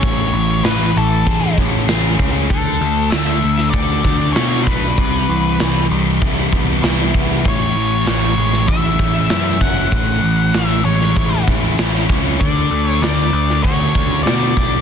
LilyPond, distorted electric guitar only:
\new Staff \with { instrumentName = "Distorted electric guitar" } { \time 4/4 \key a \major \tempo 4 = 97 <a, cis' gis'>8 e8 e8 a8 gis'8 cis'8 gis'8 cis'8 | d8 a8 d8 a8 fis'8 d'8 fis'8 d'8 | c8 e8 e8 g8 e'8 b8 e'8 b8 | a,8 e8 e8 gis8 e'8 cis'8 e'8 cis'8 |
a,8 e8 e8 gis8 e'8 cis'8 e'8 cis'8 | d8 a8 d8 a8 fis'8 d'8 fis'8 d'8 | }